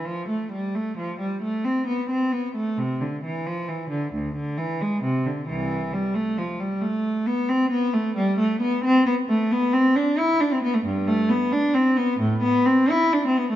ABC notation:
X:1
M:12/8
L:1/16
Q:3/8=89
K:Am
V:1 name="Cello"
F,2 A,2 G,2 A,2 F,2 G,2 A,2 C2 B,2 C2 B,2 A,2 | C,2 D,2 E,2 F,2 E,2 D,2 D,,2 D,2 E,2 ^G,2 C,2 D,2 | [C,,E,]4 G,2 A,2 F,2 G,2 A,4 B,2 C2 B,2 A,2 | [K:Bphr] G,2 A,2 B,2 C2 B,2 A,2 B,2 C2 D2 E2 D C B, A, |
G,,2 A,2 B,2 D2 C2 B,2 A,,2 B,2 C2 E2 D C B, A, |]